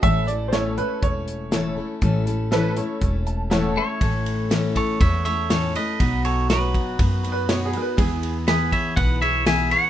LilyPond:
<<
  \new Staff \with { instrumentName = "Clean electric guitar" } { \time 4/4 \key a \mixolydian \tempo 4 = 121 r1 | r2. r8 <a' cis''>8~ | \key a \lydian <a' cis''>4. <a' cis''>8 <cis'' e''>8 <cis'' e''>8 <a' cis''>8 <b' dis''>8~ | <b' dis''>8 <a' cis''>8 <fis' b'>2 r4 |
r4 <gis' b'>8 <cis'' e''>8 <b' fis''>8 <cis'' e''>8 <e'' gis''>8 <cis'' fis''>8 | }
  \new Staff \with { instrumentName = "Upright piano" } { \time 4/4 \key a \mixolydian e''8 d''8 <c'' cis''>8 b'8 cis''4. r8 | r1 | \key a \lydian r1 | r2 \tuplet 3/2 { r4 b'8 cis''8 gis'8 <ais' b'>8 } |
gis'8. r2. r16 | }
  \new Staff \with { instrumentName = "Honky-tonk piano" } { \time 4/4 \key a \mixolydian << { r1 | r2 r8 a''8 fis''8 e''8 | \key a \lydian r1 | r1 |
r1 | } \\ { r4 <e' a' cis''>8 <e' a' cis''>8. r8. <e' a' cis''>8. r16 | r4 <e' a' b'>8 <e' a' cis''>8. r8. <e' a' cis''>8. r16 | r1 | r1 |
r1 | } >> }
  \new Staff \with { instrumentName = "Steel-string acoustic guitar" } { \time 4/4 \key a \mixolydian <a, e a cis' e' a'>8 <a cis' e' a'>8 <a, e a cis' e' a'>8 <a cis' e' a'>8 <a cis' e' a'>4 <a, e a cis' e' a'>8 <a cis' e' a'>8 | <a, e a cis' e' a'>8 <a cis' e' a'>8 <a, e a cis' e' a'>8 <a cis' e' a'>8 <a cis' e' a'>4 <a, e a cis' e' a'>8 <a cis' e' a'>8 | \key a \lydian <a, e a cis' e' a'>4 <a, e a cis' e' a'>4 <a cis' e' a'>8 <a cis' e' a'>8 <a, e a cis' e' a'>8 <a cis' e' a'>8 | <b, fis b dis' fis' b'>4 <b, fis b dis' fis' b'>4 <b dis' fis' b'>8 <b dis' fis' b'>8 <b, fis b dis' fis' b'>8 <b dis' fis' b'>8 |
<e b e' gis' b'>4 <e b e' gis' b'>4 <b e' gis' b'>8 <e' gis' b'>8 <e b e' gis' b'>8 <e' gis' b'>8 | }
  \new Staff \with { instrumentName = "Upright bass" } { \clef bass \time 4/4 \key a \mixolydian a,,2 e,,2 | a,,2 e,,2 | \key a \lydian a,,2 e,2 | b,,2 fis,2 |
e,2 b,,2 | }
  \new DrumStaff \with { instrumentName = "Drums" } \drummode { \time 4/4 <hh bd>8 hh8 <hh sn>8 hh8 <hh bd>8 hh8 <hh sn>4 | <hh bd>8 hh8 <hh sn>8 hh8 <hh bd>8 hh8 <hh sn>4 | <bd cymr>8 cymr8 <cymr sn>8 <bd cymr>8 <bd cymr>8 cymr8 <cymr sn>8 cymr8 | <bd cymr>8 cymr8 <cymr sn>8 <bd cymr>8 <bd cymr>8 cymr8 <cymr sn>8 cymr8 |
<bd cymr>8 cymr8 <cymr sn>8 <bd cymr>8 <bd cymr>8 cymr8 <cymr sn>8 cymr8 | }
>>